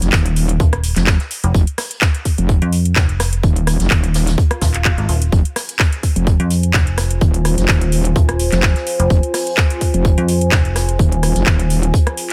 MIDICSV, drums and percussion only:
0, 0, Header, 1, 2, 480
1, 0, Start_track
1, 0, Key_signature, -4, "minor"
1, 0, Tempo, 472441
1, 1569, Time_signature, 4, 2, 24, 8
1, 12526, End_track
2, 0, Start_track
2, 0, Title_t, "Drums"
2, 20, Note_on_c, 9, 38, 42
2, 20, Note_on_c, 9, 42, 67
2, 121, Note_off_c, 9, 38, 0
2, 122, Note_off_c, 9, 42, 0
2, 126, Note_on_c, 9, 39, 113
2, 127, Note_on_c, 9, 38, 119
2, 129, Note_on_c, 9, 36, 121
2, 136, Note_on_c, 9, 42, 97
2, 228, Note_off_c, 9, 39, 0
2, 229, Note_off_c, 9, 38, 0
2, 231, Note_off_c, 9, 36, 0
2, 238, Note_off_c, 9, 42, 0
2, 260, Note_on_c, 9, 42, 55
2, 361, Note_off_c, 9, 42, 0
2, 369, Note_on_c, 9, 42, 74
2, 369, Note_on_c, 9, 46, 104
2, 470, Note_off_c, 9, 42, 0
2, 471, Note_off_c, 9, 46, 0
2, 500, Note_on_c, 9, 42, 66
2, 601, Note_off_c, 9, 42, 0
2, 609, Note_on_c, 9, 36, 118
2, 609, Note_on_c, 9, 42, 92
2, 710, Note_off_c, 9, 36, 0
2, 711, Note_off_c, 9, 42, 0
2, 740, Note_on_c, 9, 37, 71
2, 740, Note_on_c, 9, 42, 38
2, 841, Note_off_c, 9, 37, 0
2, 841, Note_off_c, 9, 42, 0
2, 849, Note_on_c, 9, 42, 75
2, 849, Note_on_c, 9, 46, 103
2, 950, Note_off_c, 9, 46, 0
2, 951, Note_off_c, 9, 42, 0
2, 976, Note_on_c, 9, 39, 36
2, 980, Note_on_c, 9, 38, 54
2, 980, Note_on_c, 9, 42, 68
2, 1078, Note_off_c, 9, 39, 0
2, 1081, Note_off_c, 9, 42, 0
2, 1082, Note_off_c, 9, 38, 0
2, 1085, Note_on_c, 9, 39, 112
2, 1089, Note_on_c, 9, 36, 121
2, 1090, Note_on_c, 9, 38, 121
2, 1090, Note_on_c, 9, 42, 93
2, 1187, Note_off_c, 9, 39, 0
2, 1191, Note_off_c, 9, 36, 0
2, 1191, Note_off_c, 9, 42, 0
2, 1192, Note_off_c, 9, 38, 0
2, 1219, Note_on_c, 9, 42, 37
2, 1220, Note_on_c, 9, 38, 42
2, 1321, Note_off_c, 9, 42, 0
2, 1322, Note_off_c, 9, 38, 0
2, 1329, Note_on_c, 9, 42, 71
2, 1329, Note_on_c, 9, 46, 102
2, 1430, Note_off_c, 9, 42, 0
2, 1430, Note_off_c, 9, 46, 0
2, 1459, Note_on_c, 9, 42, 69
2, 1561, Note_off_c, 9, 42, 0
2, 1569, Note_on_c, 9, 36, 112
2, 1574, Note_on_c, 9, 42, 86
2, 1671, Note_off_c, 9, 36, 0
2, 1676, Note_off_c, 9, 42, 0
2, 1699, Note_on_c, 9, 42, 57
2, 1801, Note_off_c, 9, 42, 0
2, 1806, Note_on_c, 9, 38, 51
2, 1808, Note_on_c, 9, 46, 74
2, 1809, Note_off_c, 9, 46, 0
2, 1809, Note_on_c, 9, 37, 66
2, 1809, Note_on_c, 9, 46, 104
2, 1907, Note_off_c, 9, 38, 0
2, 1910, Note_off_c, 9, 37, 0
2, 1910, Note_off_c, 9, 46, 0
2, 1939, Note_on_c, 9, 42, 69
2, 2040, Note_off_c, 9, 42, 0
2, 2046, Note_on_c, 9, 39, 122
2, 2047, Note_on_c, 9, 42, 97
2, 2049, Note_on_c, 9, 36, 118
2, 2052, Note_on_c, 9, 38, 120
2, 2147, Note_off_c, 9, 39, 0
2, 2148, Note_off_c, 9, 42, 0
2, 2151, Note_off_c, 9, 36, 0
2, 2154, Note_off_c, 9, 38, 0
2, 2180, Note_on_c, 9, 42, 55
2, 2281, Note_off_c, 9, 42, 0
2, 2286, Note_on_c, 9, 42, 70
2, 2289, Note_on_c, 9, 36, 59
2, 2289, Note_on_c, 9, 46, 106
2, 2388, Note_off_c, 9, 42, 0
2, 2390, Note_off_c, 9, 46, 0
2, 2391, Note_off_c, 9, 36, 0
2, 2420, Note_on_c, 9, 42, 69
2, 2521, Note_off_c, 9, 42, 0
2, 2530, Note_on_c, 9, 36, 116
2, 2532, Note_on_c, 9, 42, 89
2, 2631, Note_off_c, 9, 36, 0
2, 2634, Note_off_c, 9, 42, 0
2, 2660, Note_on_c, 9, 42, 40
2, 2761, Note_off_c, 9, 42, 0
2, 2769, Note_on_c, 9, 46, 102
2, 2773, Note_on_c, 9, 42, 67
2, 2870, Note_off_c, 9, 46, 0
2, 2874, Note_off_c, 9, 42, 0
2, 2900, Note_on_c, 9, 42, 68
2, 3001, Note_off_c, 9, 42, 0
2, 3006, Note_on_c, 9, 39, 116
2, 3008, Note_on_c, 9, 38, 117
2, 3008, Note_on_c, 9, 42, 94
2, 3009, Note_on_c, 9, 36, 116
2, 3108, Note_off_c, 9, 39, 0
2, 3109, Note_off_c, 9, 38, 0
2, 3109, Note_off_c, 9, 42, 0
2, 3111, Note_off_c, 9, 36, 0
2, 3140, Note_on_c, 9, 42, 38
2, 3242, Note_off_c, 9, 42, 0
2, 3249, Note_on_c, 9, 42, 75
2, 3250, Note_on_c, 9, 37, 72
2, 3250, Note_on_c, 9, 46, 99
2, 3251, Note_on_c, 9, 38, 54
2, 3350, Note_off_c, 9, 42, 0
2, 3352, Note_off_c, 9, 37, 0
2, 3352, Note_off_c, 9, 46, 0
2, 3353, Note_off_c, 9, 38, 0
2, 3380, Note_on_c, 9, 42, 70
2, 3482, Note_off_c, 9, 42, 0
2, 3489, Note_on_c, 9, 36, 110
2, 3493, Note_on_c, 9, 42, 91
2, 3591, Note_off_c, 9, 36, 0
2, 3594, Note_off_c, 9, 42, 0
2, 3620, Note_on_c, 9, 42, 57
2, 3722, Note_off_c, 9, 42, 0
2, 3730, Note_on_c, 9, 37, 67
2, 3730, Note_on_c, 9, 46, 104
2, 3739, Note_on_c, 9, 42, 70
2, 3831, Note_off_c, 9, 37, 0
2, 3831, Note_off_c, 9, 46, 0
2, 3841, Note_off_c, 9, 42, 0
2, 3859, Note_on_c, 9, 38, 46
2, 3860, Note_on_c, 9, 42, 72
2, 3960, Note_off_c, 9, 38, 0
2, 3962, Note_off_c, 9, 42, 0
2, 3964, Note_on_c, 9, 38, 105
2, 3966, Note_on_c, 9, 39, 122
2, 3969, Note_on_c, 9, 36, 121
2, 3972, Note_on_c, 9, 42, 90
2, 4066, Note_off_c, 9, 38, 0
2, 4068, Note_off_c, 9, 39, 0
2, 4071, Note_off_c, 9, 36, 0
2, 4074, Note_off_c, 9, 42, 0
2, 4100, Note_on_c, 9, 42, 58
2, 4202, Note_off_c, 9, 42, 0
2, 4209, Note_on_c, 9, 46, 104
2, 4211, Note_on_c, 9, 42, 80
2, 4217, Note_on_c, 9, 38, 110
2, 4311, Note_off_c, 9, 46, 0
2, 4312, Note_off_c, 9, 42, 0
2, 4319, Note_off_c, 9, 38, 0
2, 4340, Note_on_c, 9, 42, 71
2, 4345, Note_off_c, 9, 42, 0
2, 4345, Note_on_c, 9, 42, 85
2, 4346, Note_on_c, 9, 38, 99
2, 4446, Note_off_c, 9, 42, 0
2, 4448, Note_off_c, 9, 38, 0
2, 4449, Note_on_c, 9, 36, 118
2, 4457, Note_on_c, 9, 42, 88
2, 4551, Note_off_c, 9, 36, 0
2, 4559, Note_off_c, 9, 42, 0
2, 4580, Note_on_c, 9, 37, 72
2, 4580, Note_on_c, 9, 42, 41
2, 4681, Note_off_c, 9, 37, 0
2, 4681, Note_off_c, 9, 42, 0
2, 4689, Note_on_c, 9, 36, 58
2, 4689, Note_on_c, 9, 46, 107
2, 4690, Note_on_c, 9, 42, 86
2, 4693, Note_on_c, 9, 38, 98
2, 4790, Note_off_c, 9, 46, 0
2, 4791, Note_off_c, 9, 36, 0
2, 4791, Note_off_c, 9, 42, 0
2, 4795, Note_off_c, 9, 38, 0
2, 4816, Note_on_c, 9, 39, 39
2, 4820, Note_on_c, 9, 42, 70
2, 4918, Note_off_c, 9, 39, 0
2, 4921, Note_off_c, 9, 42, 0
2, 4926, Note_on_c, 9, 39, 123
2, 4929, Note_on_c, 9, 36, 115
2, 4935, Note_on_c, 9, 42, 58
2, 5027, Note_off_c, 9, 39, 0
2, 5031, Note_off_c, 9, 36, 0
2, 5036, Note_off_c, 9, 42, 0
2, 5060, Note_on_c, 9, 42, 39
2, 5161, Note_off_c, 9, 42, 0
2, 5170, Note_on_c, 9, 46, 103
2, 5178, Note_on_c, 9, 42, 68
2, 5271, Note_off_c, 9, 46, 0
2, 5279, Note_off_c, 9, 42, 0
2, 5300, Note_on_c, 9, 42, 73
2, 5402, Note_off_c, 9, 42, 0
2, 5409, Note_on_c, 9, 36, 121
2, 5409, Note_on_c, 9, 42, 85
2, 5510, Note_off_c, 9, 42, 0
2, 5511, Note_off_c, 9, 36, 0
2, 5540, Note_on_c, 9, 42, 57
2, 5642, Note_off_c, 9, 42, 0
2, 5650, Note_on_c, 9, 37, 65
2, 5650, Note_on_c, 9, 46, 108
2, 5652, Note_on_c, 9, 38, 49
2, 5654, Note_off_c, 9, 46, 0
2, 5654, Note_on_c, 9, 46, 83
2, 5751, Note_off_c, 9, 37, 0
2, 5754, Note_off_c, 9, 38, 0
2, 5756, Note_off_c, 9, 46, 0
2, 5780, Note_on_c, 9, 42, 69
2, 5882, Note_off_c, 9, 42, 0
2, 5886, Note_on_c, 9, 39, 127
2, 5889, Note_on_c, 9, 36, 123
2, 5892, Note_on_c, 9, 38, 111
2, 5897, Note_on_c, 9, 42, 89
2, 5987, Note_off_c, 9, 39, 0
2, 5991, Note_off_c, 9, 36, 0
2, 5994, Note_off_c, 9, 38, 0
2, 5999, Note_off_c, 9, 42, 0
2, 6020, Note_on_c, 9, 42, 56
2, 6121, Note_off_c, 9, 42, 0
2, 6126, Note_on_c, 9, 42, 76
2, 6129, Note_on_c, 9, 36, 62
2, 6129, Note_on_c, 9, 46, 108
2, 6228, Note_off_c, 9, 42, 0
2, 6230, Note_off_c, 9, 36, 0
2, 6231, Note_off_c, 9, 46, 0
2, 6260, Note_on_c, 9, 42, 71
2, 6361, Note_off_c, 9, 42, 0
2, 6367, Note_on_c, 9, 42, 86
2, 6369, Note_on_c, 9, 36, 123
2, 6469, Note_off_c, 9, 42, 0
2, 6470, Note_off_c, 9, 36, 0
2, 6500, Note_on_c, 9, 42, 40
2, 6601, Note_off_c, 9, 42, 0
2, 6609, Note_on_c, 9, 46, 107
2, 6613, Note_on_c, 9, 42, 73
2, 6710, Note_off_c, 9, 46, 0
2, 6715, Note_off_c, 9, 42, 0
2, 6739, Note_on_c, 9, 42, 70
2, 6841, Note_off_c, 9, 42, 0
2, 6845, Note_on_c, 9, 38, 120
2, 6846, Note_on_c, 9, 39, 127
2, 6849, Note_on_c, 9, 36, 120
2, 6852, Note_on_c, 9, 42, 92
2, 6946, Note_off_c, 9, 38, 0
2, 6947, Note_off_c, 9, 39, 0
2, 6950, Note_off_c, 9, 36, 0
2, 6954, Note_off_c, 9, 42, 0
2, 6979, Note_on_c, 9, 42, 40
2, 7081, Note_off_c, 9, 42, 0
2, 7087, Note_on_c, 9, 38, 59
2, 7088, Note_on_c, 9, 37, 67
2, 7088, Note_on_c, 9, 46, 109
2, 7099, Note_on_c, 9, 42, 70
2, 7189, Note_off_c, 9, 38, 0
2, 7190, Note_off_c, 9, 37, 0
2, 7190, Note_off_c, 9, 46, 0
2, 7201, Note_off_c, 9, 42, 0
2, 7219, Note_on_c, 9, 42, 75
2, 7320, Note_off_c, 9, 42, 0
2, 7323, Note_on_c, 9, 42, 89
2, 7329, Note_on_c, 9, 36, 122
2, 7425, Note_off_c, 9, 42, 0
2, 7430, Note_off_c, 9, 36, 0
2, 7459, Note_on_c, 9, 42, 54
2, 7561, Note_off_c, 9, 42, 0
2, 7569, Note_on_c, 9, 37, 62
2, 7569, Note_on_c, 9, 46, 111
2, 7573, Note_on_c, 9, 42, 69
2, 7670, Note_off_c, 9, 37, 0
2, 7670, Note_off_c, 9, 46, 0
2, 7674, Note_off_c, 9, 42, 0
2, 7699, Note_on_c, 9, 42, 70
2, 7702, Note_on_c, 9, 38, 41
2, 7801, Note_off_c, 9, 42, 0
2, 7803, Note_off_c, 9, 38, 0
2, 7805, Note_on_c, 9, 39, 124
2, 7807, Note_on_c, 9, 38, 127
2, 7809, Note_on_c, 9, 36, 127
2, 7810, Note_on_c, 9, 42, 98
2, 7907, Note_off_c, 9, 39, 0
2, 7909, Note_off_c, 9, 38, 0
2, 7910, Note_off_c, 9, 36, 0
2, 7912, Note_off_c, 9, 42, 0
2, 7939, Note_on_c, 9, 42, 54
2, 8041, Note_off_c, 9, 42, 0
2, 8047, Note_on_c, 9, 42, 78
2, 8048, Note_on_c, 9, 46, 112
2, 8148, Note_off_c, 9, 42, 0
2, 8150, Note_off_c, 9, 46, 0
2, 8179, Note_on_c, 9, 42, 68
2, 8281, Note_off_c, 9, 42, 0
2, 8284, Note_on_c, 9, 42, 96
2, 8288, Note_on_c, 9, 36, 126
2, 8385, Note_off_c, 9, 42, 0
2, 8390, Note_off_c, 9, 36, 0
2, 8419, Note_on_c, 9, 37, 67
2, 8419, Note_on_c, 9, 42, 39
2, 8521, Note_off_c, 9, 37, 0
2, 8521, Note_off_c, 9, 42, 0
2, 8528, Note_on_c, 9, 42, 65
2, 8529, Note_on_c, 9, 46, 116
2, 8629, Note_off_c, 9, 42, 0
2, 8631, Note_off_c, 9, 46, 0
2, 8656, Note_on_c, 9, 39, 39
2, 8660, Note_on_c, 9, 38, 54
2, 8660, Note_on_c, 9, 42, 68
2, 8758, Note_off_c, 9, 39, 0
2, 8761, Note_off_c, 9, 42, 0
2, 8762, Note_off_c, 9, 38, 0
2, 8765, Note_on_c, 9, 39, 127
2, 8766, Note_on_c, 9, 42, 82
2, 8767, Note_on_c, 9, 38, 114
2, 8768, Note_on_c, 9, 36, 127
2, 8867, Note_off_c, 9, 39, 0
2, 8868, Note_off_c, 9, 38, 0
2, 8868, Note_off_c, 9, 42, 0
2, 8870, Note_off_c, 9, 36, 0
2, 8900, Note_on_c, 9, 42, 38
2, 8904, Note_on_c, 9, 38, 39
2, 9001, Note_off_c, 9, 42, 0
2, 9005, Note_on_c, 9, 42, 69
2, 9006, Note_off_c, 9, 38, 0
2, 9009, Note_on_c, 9, 46, 113
2, 9106, Note_off_c, 9, 42, 0
2, 9110, Note_off_c, 9, 46, 0
2, 9140, Note_on_c, 9, 42, 68
2, 9242, Note_off_c, 9, 42, 0
2, 9248, Note_on_c, 9, 36, 126
2, 9248, Note_on_c, 9, 42, 92
2, 9350, Note_off_c, 9, 36, 0
2, 9350, Note_off_c, 9, 42, 0
2, 9380, Note_on_c, 9, 42, 53
2, 9481, Note_off_c, 9, 42, 0
2, 9484, Note_on_c, 9, 38, 50
2, 9489, Note_on_c, 9, 37, 60
2, 9489, Note_on_c, 9, 46, 117
2, 9585, Note_off_c, 9, 38, 0
2, 9591, Note_off_c, 9, 37, 0
2, 9591, Note_off_c, 9, 46, 0
2, 9620, Note_on_c, 9, 42, 65
2, 9722, Note_off_c, 9, 42, 0
2, 9726, Note_on_c, 9, 39, 126
2, 9726, Note_on_c, 9, 42, 86
2, 9728, Note_on_c, 9, 38, 122
2, 9729, Note_on_c, 9, 36, 127
2, 9827, Note_off_c, 9, 39, 0
2, 9827, Note_off_c, 9, 42, 0
2, 9829, Note_off_c, 9, 38, 0
2, 9830, Note_off_c, 9, 36, 0
2, 9859, Note_on_c, 9, 42, 55
2, 9961, Note_off_c, 9, 42, 0
2, 9968, Note_on_c, 9, 42, 69
2, 9968, Note_on_c, 9, 46, 115
2, 9969, Note_on_c, 9, 36, 67
2, 10070, Note_off_c, 9, 36, 0
2, 10070, Note_off_c, 9, 42, 0
2, 10070, Note_off_c, 9, 46, 0
2, 10099, Note_on_c, 9, 42, 67
2, 10201, Note_off_c, 9, 42, 0
2, 10208, Note_on_c, 9, 42, 96
2, 10209, Note_on_c, 9, 36, 127
2, 10309, Note_off_c, 9, 42, 0
2, 10310, Note_off_c, 9, 36, 0
2, 10340, Note_on_c, 9, 42, 38
2, 10441, Note_off_c, 9, 42, 0
2, 10449, Note_on_c, 9, 46, 109
2, 10451, Note_on_c, 9, 42, 68
2, 10551, Note_off_c, 9, 46, 0
2, 10553, Note_off_c, 9, 42, 0
2, 10580, Note_on_c, 9, 42, 66
2, 10680, Note_off_c, 9, 42, 0
2, 10680, Note_on_c, 9, 42, 87
2, 10686, Note_on_c, 9, 39, 126
2, 10689, Note_on_c, 9, 36, 127
2, 10693, Note_on_c, 9, 38, 107
2, 10782, Note_off_c, 9, 42, 0
2, 10788, Note_off_c, 9, 39, 0
2, 10791, Note_off_c, 9, 36, 0
2, 10795, Note_off_c, 9, 38, 0
2, 10821, Note_on_c, 9, 42, 37
2, 10922, Note_off_c, 9, 42, 0
2, 10929, Note_on_c, 9, 37, 63
2, 10929, Note_on_c, 9, 42, 68
2, 10929, Note_on_c, 9, 46, 115
2, 10934, Note_on_c, 9, 38, 57
2, 11031, Note_off_c, 9, 37, 0
2, 11031, Note_off_c, 9, 42, 0
2, 11031, Note_off_c, 9, 46, 0
2, 11036, Note_off_c, 9, 38, 0
2, 11060, Note_on_c, 9, 42, 66
2, 11162, Note_off_c, 9, 42, 0
2, 11169, Note_on_c, 9, 36, 119
2, 11172, Note_on_c, 9, 42, 92
2, 11270, Note_off_c, 9, 36, 0
2, 11274, Note_off_c, 9, 42, 0
2, 11300, Note_on_c, 9, 42, 51
2, 11402, Note_off_c, 9, 42, 0
2, 11410, Note_on_c, 9, 37, 62
2, 11410, Note_on_c, 9, 42, 69
2, 11410, Note_on_c, 9, 46, 115
2, 11511, Note_off_c, 9, 37, 0
2, 11511, Note_off_c, 9, 42, 0
2, 11511, Note_off_c, 9, 46, 0
2, 11529, Note_on_c, 9, 38, 40
2, 11540, Note_on_c, 9, 42, 67
2, 11631, Note_off_c, 9, 38, 0
2, 11642, Note_off_c, 9, 42, 0
2, 11646, Note_on_c, 9, 39, 122
2, 11646, Note_on_c, 9, 42, 87
2, 11648, Note_on_c, 9, 38, 127
2, 11649, Note_on_c, 9, 36, 127
2, 11747, Note_off_c, 9, 39, 0
2, 11748, Note_off_c, 9, 42, 0
2, 11750, Note_off_c, 9, 36, 0
2, 11750, Note_off_c, 9, 38, 0
2, 11780, Note_on_c, 9, 42, 51
2, 11882, Note_off_c, 9, 42, 0
2, 11889, Note_on_c, 9, 46, 113
2, 11897, Note_on_c, 9, 42, 71
2, 11991, Note_off_c, 9, 46, 0
2, 11999, Note_off_c, 9, 42, 0
2, 12020, Note_on_c, 9, 42, 64
2, 12122, Note_off_c, 9, 42, 0
2, 12129, Note_on_c, 9, 36, 124
2, 12134, Note_on_c, 9, 42, 84
2, 12230, Note_off_c, 9, 36, 0
2, 12236, Note_off_c, 9, 42, 0
2, 12260, Note_on_c, 9, 37, 68
2, 12260, Note_on_c, 9, 42, 38
2, 12362, Note_off_c, 9, 37, 0
2, 12362, Note_off_c, 9, 42, 0
2, 12365, Note_on_c, 9, 42, 75
2, 12369, Note_on_c, 9, 46, 110
2, 12467, Note_off_c, 9, 42, 0
2, 12470, Note_off_c, 9, 46, 0
2, 12526, End_track
0, 0, End_of_file